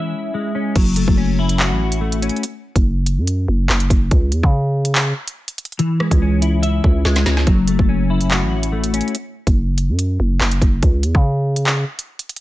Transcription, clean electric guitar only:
0, 0, Header, 1, 2, 480
1, 0, Start_track
1, 0, Tempo, 419580
1, 866, Time_signature, 4, 2, 24, 8
1, 14195, End_track
2, 0, Start_track
2, 0, Title_t, "Clean electric guitar"
2, 0, Program_c, 0, 27
2, 0, Note_on_c, 0, 52, 91
2, 0, Note_on_c, 0, 56, 73
2, 0, Note_on_c, 0, 61, 84
2, 0, Note_on_c, 0, 64, 84
2, 0, Note_on_c, 0, 76, 98
2, 144, Note_off_c, 0, 52, 0
2, 377, Note_off_c, 0, 56, 0
2, 391, Note_on_c, 0, 56, 83
2, 615, Note_off_c, 0, 61, 0
2, 628, Note_on_c, 0, 61, 78
2, 862, Note_off_c, 0, 64, 0
2, 862, Note_off_c, 0, 76, 0
2, 867, Note_off_c, 0, 61, 0
2, 868, Note_off_c, 0, 56, 0
2, 872, Note_on_c, 0, 54, 93
2, 1107, Note_on_c, 0, 57, 77
2, 1344, Note_on_c, 0, 61, 92
2, 1588, Note_on_c, 0, 64, 88
2, 1828, Note_on_c, 0, 66, 101
2, 2069, Note_off_c, 0, 54, 0
2, 2285, Note_off_c, 0, 57, 0
2, 2299, Note_on_c, 0, 57, 82
2, 2530, Note_off_c, 0, 61, 0
2, 2544, Note_on_c, 0, 61, 86
2, 2782, Note_off_c, 0, 57, 0
2, 2785, Note_off_c, 0, 61, 0
2, 2787, Note_off_c, 0, 64, 0
2, 2787, Note_off_c, 0, 66, 0
2, 6623, Note_on_c, 0, 52, 93
2, 6863, Note_on_c, 0, 56, 75
2, 7116, Note_on_c, 0, 61, 84
2, 7341, Note_on_c, 0, 64, 87
2, 7580, Note_on_c, 0, 76, 102
2, 7824, Note_off_c, 0, 52, 0
2, 8057, Note_off_c, 0, 56, 0
2, 8070, Note_on_c, 0, 56, 87
2, 8295, Note_off_c, 0, 61, 0
2, 8308, Note_on_c, 0, 61, 79
2, 8543, Note_off_c, 0, 64, 0
2, 8543, Note_off_c, 0, 76, 0
2, 8547, Note_off_c, 0, 61, 0
2, 8548, Note_off_c, 0, 56, 0
2, 8552, Note_on_c, 0, 54, 94
2, 8786, Note_on_c, 0, 57, 76
2, 9024, Note_on_c, 0, 61, 93
2, 9267, Note_on_c, 0, 64, 88
2, 9507, Note_on_c, 0, 66, 104
2, 9749, Note_off_c, 0, 54, 0
2, 9965, Note_off_c, 0, 57, 0
2, 9978, Note_on_c, 0, 57, 86
2, 10211, Note_off_c, 0, 61, 0
2, 10225, Note_on_c, 0, 61, 88
2, 10462, Note_off_c, 0, 57, 0
2, 10465, Note_off_c, 0, 61, 0
2, 10466, Note_off_c, 0, 64, 0
2, 10466, Note_off_c, 0, 66, 0
2, 14195, End_track
0, 0, End_of_file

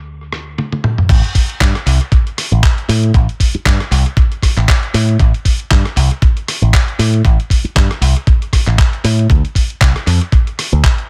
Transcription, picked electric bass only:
0, 0, Header, 1, 3, 480
1, 0, Start_track
1, 0, Key_signature, 0, "minor"
1, 0, Tempo, 512821
1, 1025, Time_signature, 4, 2, 24, 8
1, 10386, End_track
2, 0, Start_track
2, 0, Title_t, "Picked electric bass"
2, 0, Program_c, 0, 34
2, 0, Note_on_c, 0, 38, 78
2, 544, Note_off_c, 0, 38, 0
2, 1021, Note_on_c, 0, 33, 100
2, 1134, Note_off_c, 0, 33, 0
2, 1503, Note_on_c, 0, 43, 90
2, 1614, Note_off_c, 0, 43, 0
2, 1743, Note_on_c, 0, 36, 107
2, 1855, Note_off_c, 0, 36, 0
2, 2356, Note_on_c, 0, 33, 81
2, 2446, Note_off_c, 0, 33, 0
2, 2703, Note_on_c, 0, 45, 95
2, 2908, Note_off_c, 0, 45, 0
2, 2940, Note_on_c, 0, 33, 99
2, 3053, Note_off_c, 0, 33, 0
2, 3421, Note_on_c, 0, 43, 88
2, 3533, Note_off_c, 0, 43, 0
2, 3663, Note_on_c, 0, 36, 100
2, 3774, Note_off_c, 0, 36, 0
2, 4277, Note_on_c, 0, 33, 86
2, 4367, Note_off_c, 0, 33, 0
2, 4624, Note_on_c, 0, 45, 94
2, 4828, Note_off_c, 0, 45, 0
2, 4862, Note_on_c, 0, 33, 98
2, 4974, Note_off_c, 0, 33, 0
2, 5343, Note_on_c, 0, 43, 91
2, 5454, Note_off_c, 0, 43, 0
2, 5584, Note_on_c, 0, 36, 100
2, 5695, Note_off_c, 0, 36, 0
2, 6195, Note_on_c, 0, 33, 87
2, 6285, Note_off_c, 0, 33, 0
2, 6543, Note_on_c, 0, 45, 91
2, 6748, Note_off_c, 0, 45, 0
2, 6782, Note_on_c, 0, 33, 100
2, 6894, Note_off_c, 0, 33, 0
2, 7262, Note_on_c, 0, 43, 93
2, 7374, Note_off_c, 0, 43, 0
2, 7500, Note_on_c, 0, 36, 97
2, 7613, Note_off_c, 0, 36, 0
2, 8115, Note_on_c, 0, 33, 87
2, 8205, Note_off_c, 0, 33, 0
2, 8463, Note_on_c, 0, 45, 96
2, 8668, Note_off_c, 0, 45, 0
2, 8702, Note_on_c, 0, 38, 101
2, 8814, Note_off_c, 0, 38, 0
2, 9181, Note_on_c, 0, 36, 93
2, 9294, Note_off_c, 0, 36, 0
2, 9423, Note_on_c, 0, 41, 102
2, 9534, Note_off_c, 0, 41, 0
2, 10039, Note_on_c, 0, 38, 89
2, 10127, Note_off_c, 0, 38, 0
2, 10386, End_track
3, 0, Start_track
3, 0, Title_t, "Muted picked electric bass strokes"
3, 3318, Note_on_c, 9, 29, 43
3, 3412, Note_off_c, 9, 29, 0
3, 7154, Note_on_c, 9, 29, 45
3, 7248, Note_off_c, 9, 29, 0
3, 10386, End_track
0, 0, End_of_file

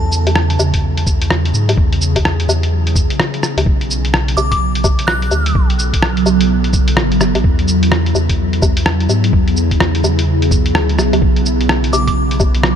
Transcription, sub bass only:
0, 0, Header, 1, 2, 480
1, 0, Start_track
1, 0, Tempo, 472441
1, 1802, Time_signature, 4, 2, 24, 8
1, 12959, End_track
2, 0, Start_track
2, 0, Title_t, "Sub bass"
2, 0, Program_c, 0, 38
2, 0, Note_on_c, 0, 40, 103
2, 590, Note_off_c, 0, 40, 0
2, 607, Note_on_c, 0, 40, 85
2, 1213, Note_off_c, 0, 40, 0
2, 1234, Note_on_c, 0, 40, 88
2, 1552, Note_off_c, 0, 40, 0
2, 1562, Note_on_c, 0, 44, 101
2, 1787, Note_off_c, 0, 44, 0
2, 1805, Note_on_c, 0, 40, 106
2, 2511, Note_off_c, 0, 40, 0
2, 2522, Note_on_c, 0, 40, 86
2, 3130, Note_off_c, 0, 40, 0
2, 3627, Note_on_c, 0, 38, 91
2, 3713, Note_off_c, 0, 38, 0
2, 3722, Note_on_c, 0, 35, 98
2, 4430, Note_off_c, 0, 35, 0
2, 4440, Note_on_c, 0, 35, 84
2, 5050, Note_off_c, 0, 35, 0
2, 5070, Note_on_c, 0, 35, 88
2, 5390, Note_off_c, 0, 35, 0
2, 5398, Note_on_c, 0, 38, 104
2, 5625, Note_off_c, 0, 38, 0
2, 5640, Note_on_c, 0, 35, 102
2, 6349, Note_off_c, 0, 35, 0
2, 6362, Note_on_c, 0, 35, 89
2, 7080, Note_on_c, 0, 33, 105
2, 7095, Note_off_c, 0, 35, 0
2, 7319, Note_on_c, 0, 30, 92
2, 7334, Note_off_c, 0, 33, 0
2, 7456, Note_off_c, 0, 30, 0
2, 7467, Note_on_c, 0, 33, 88
2, 7554, Note_off_c, 0, 33, 0
2, 7561, Note_on_c, 0, 40, 102
2, 8270, Note_off_c, 0, 40, 0
2, 8283, Note_on_c, 0, 40, 86
2, 8891, Note_off_c, 0, 40, 0
2, 8909, Note_on_c, 0, 40, 88
2, 9230, Note_off_c, 0, 40, 0
2, 9240, Note_on_c, 0, 44, 102
2, 9466, Note_off_c, 0, 44, 0
2, 9481, Note_on_c, 0, 40, 105
2, 10190, Note_off_c, 0, 40, 0
2, 10199, Note_on_c, 0, 40, 83
2, 10921, Note_on_c, 0, 38, 104
2, 10936, Note_off_c, 0, 40, 0
2, 11161, Note_on_c, 0, 35, 94
2, 11177, Note_off_c, 0, 38, 0
2, 11298, Note_off_c, 0, 35, 0
2, 11310, Note_on_c, 0, 38, 83
2, 11392, Note_off_c, 0, 38, 0
2, 11398, Note_on_c, 0, 35, 99
2, 12108, Note_off_c, 0, 35, 0
2, 12119, Note_on_c, 0, 35, 88
2, 12729, Note_off_c, 0, 35, 0
2, 12745, Note_on_c, 0, 35, 90
2, 12959, Note_off_c, 0, 35, 0
2, 12959, End_track
0, 0, End_of_file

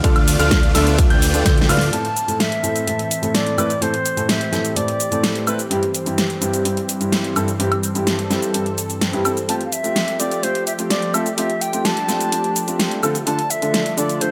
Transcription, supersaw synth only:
0, 0, Header, 1, 2, 480
1, 0, Start_track
1, 0, Key_signature, 0, "minor"
1, 0, Tempo, 472441
1, 41, Time_signature, 4, 2, 24, 8
1, 14541, End_track
2, 0, Start_track
2, 0, Title_t, "Supersaw synth"
2, 0, Program_c, 0, 81
2, 40, Note_on_c, 0, 57, 77
2, 40, Note_on_c, 0, 65, 70
2, 41, Note_on_c, 0, 62, 68
2, 41, Note_on_c, 0, 74, 70
2, 41, Note_on_c, 0, 77, 84
2, 372, Note_off_c, 0, 57, 0
2, 372, Note_off_c, 0, 62, 0
2, 372, Note_off_c, 0, 65, 0
2, 372, Note_off_c, 0, 74, 0
2, 372, Note_off_c, 0, 77, 0
2, 400, Note_on_c, 0, 62, 93
2, 400, Note_on_c, 0, 65, 93
2, 400, Note_on_c, 0, 74, 91
2, 401, Note_on_c, 0, 57, 100
2, 401, Note_on_c, 0, 77, 112
2, 732, Note_off_c, 0, 57, 0
2, 732, Note_off_c, 0, 62, 0
2, 732, Note_off_c, 0, 65, 0
2, 732, Note_off_c, 0, 74, 0
2, 732, Note_off_c, 0, 77, 0
2, 760, Note_on_c, 0, 57, 90
2, 760, Note_on_c, 0, 65, 83
2, 760, Note_on_c, 0, 74, 86
2, 760, Note_on_c, 0, 76, 102
2, 761, Note_on_c, 0, 62, 83
2, 1091, Note_off_c, 0, 74, 0
2, 1092, Note_off_c, 0, 57, 0
2, 1092, Note_off_c, 0, 62, 0
2, 1092, Note_off_c, 0, 65, 0
2, 1092, Note_off_c, 0, 76, 0
2, 1120, Note_on_c, 0, 57, 89
2, 1120, Note_on_c, 0, 62, 84
2, 1120, Note_on_c, 0, 65, 83
2, 1120, Note_on_c, 0, 79, 98
2, 1121, Note_on_c, 0, 74, 84
2, 1456, Note_off_c, 0, 57, 0
2, 1456, Note_off_c, 0, 62, 0
2, 1456, Note_off_c, 0, 65, 0
2, 1456, Note_off_c, 0, 74, 0
2, 1456, Note_off_c, 0, 79, 0
2, 1480, Note_on_c, 0, 62, 83
2, 1480, Note_on_c, 0, 65, 81
2, 1480, Note_on_c, 0, 74, 83
2, 1481, Note_on_c, 0, 57, 91
2, 1481, Note_on_c, 0, 79, 100
2, 1691, Note_off_c, 0, 65, 0
2, 1692, Note_off_c, 0, 57, 0
2, 1692, Note_off_c, 0, 62, 0
2, 1692, Note_off_c, 0, 74, 0
2, 1692, Note_off_c, 0, 79, 0
2, 1720, Note_on_c, 0, 74, 84
2, 1721, Note_on_c, 0, 57, 95
2, 1721, Note_on_c, 0, 62, 86
2, 1721, Note_on_c, 0, 65, 90
2, 1721, Note_on_c, 0, 77, 104
2, 1932, Note_off_c, 0, 57, 0
2, 1932, Note_off_c, 0, 62, 0
2, 1932, Note_off_c, 0, 65, 0
2, 1932, Note_off_c, 0, 74, 0
2, 1932, Note_off_c, 0, 77, 0
2, 14541, End_track
0, 0, End_of_file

